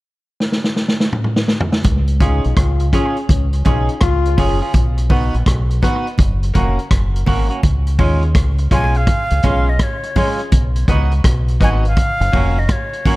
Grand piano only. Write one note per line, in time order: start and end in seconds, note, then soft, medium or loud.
2.21 2.43 C#4 medium
2.21 2.44 F4 medium
2.21 2.44 G#4 medium
2.21 2.44 C#5 medium
2.93 3.15 C#4 medium
2.93 3.16 F4 medium
2.93 3.16 G#4 medium
2.93 3.16 C#5 medium
3.65 3.88 C#4 medium
3.65 3.88 F4 medium
3.65 3.88 G#4 medium
3.65 3.88 C#5 medium
4.26 4.31 G#4 soft
4.26 4.31 C#5 soft
4.38 4.60 C#4 medium
4.38 4.61 F4 medium
4.38 4.61 G#4 medium
4.38 4.61 C#5 loud
5.10 5.32 B3 medium
5.10 5.33 D#4 medium
5.10 5.33 F#4 medium
5.10 5.33 B4 medium
5.83 6.05 B3 medium
5.83 6.05 D#4 medium
5.83 6.05 F#4 medium
5.83 6.05 B4 medium
6.54 6.77 A#3 medium
6.54 6.77 C#4 medium
6.54 6.77 F#4 medium
6.54 6.77 A#4 loud
7.14 7.19 F#4 soft
7.14 7.19 A#4 soft
7.26 7.49 A#3 medium
7.26 7.49 C#4 medium
7.26 7.50 F#4 medium
7.26 7.50 A#4 medium
7.98 8.21 C#4 medium
7.98 8.22 F4 medium
7.98 8.22 G#4 medium
7.98 8.22 C#5 loud
8.71 8.94 C#4 medium
8.71 8.94 F4 medium
8.71 8.93 G#4 medium
8.71 8.93 C#5 medium
8.95 9.00 G#4 soft
8.95 9.00 C#5 soft
9.31 9.36 G#4 soft
9.31 9.36 C#5 soft
9.43 9.66 C#4 medium
9.43 9.66 F4 medium
9.43 9.67 G#4 medium
9.43 9.67 C#5 loud
10.16 10.39 C#4 medium
10.16 10.39 F4 medium
10.16 10.39 G#4 medium
10.16 10.39 C#5 medium
10.88 11.11 D#4 medium
10.88 11.11 F#4 medium
10.88 11.11 B4 medium
10.88 11.11 D#5 medium
11.60 11.83 D#4 medium
11.60 11.83 F#4 medium
11.60 11.83 B4 medium
11.60 11.83 D#5 medium
11.84 11.89 B4 soft
11.84 11.89 D#5 soft
12.20 12.25 A#4 soft
12.20 12.25 C#5 soft
12.32 12.55 C#4 medium
12.32 12.55 F#4 medium
12.32 12.56 A#4 medium
12.32 12.56 C#5 loud
13.05 13.16 C#4 medium
13.05 13.16 F#4 medium
13.05 13.16 A#4 medium
13.05 13.16 C#5 loud